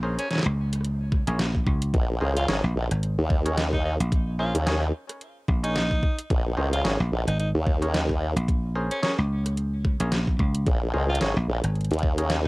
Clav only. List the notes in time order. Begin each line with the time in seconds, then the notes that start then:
0.03 C#4 G#4 A#4 C5
1.27 C#4 G#4 A#4 C#5
2.21 C#4 G#4 A#4 C5
2.48 C#4 G#4 A#4 C#5
3.45 C#4 G#4 A#4 C#5
4.39 C#4 G#4 A#4 C5
4.66 C#4 G#4 A#4 C#5
5.63 C#4 G#4 A#4 C#5
6.57 C#4 G#4 A#4 C5
6.84 C#4 G#4 A#4 C#5
7.82 C#4 G#4 A#4 C#5
8.75 C#4 G#4 A#4 C5
9.03 C#4 G#4 A#4 C#5
10.00 C#4 G#4 A#4 C#5
10.94 C#4 G#4 A#4 C5
11.21 C#4 G#4 A#4 C#5
12.18 C#4 G#4 A#4 C#5